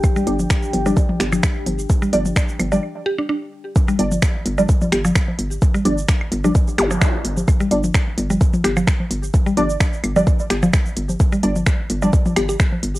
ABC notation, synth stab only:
X:1
M:4/4
L:1/16
Q:"Swing 16ths" 1/4=129
K:Cm
V:1 name="Synth stab"
z2 [G,Dd] z4 [G,Dd] z8 | z2 [G,Dd] z4 [G,Dd] z8 | z2 [G,Dd] z4 [G,Dd] z8 | z2 [G,Dd] z4 [G,Dd] z8 |
z2 [G,Dd] z12 z | z2 [G,Dd] z4 [G,Dd] z8 | z2 [G,Dd] z4 [G,Dd] z8 |]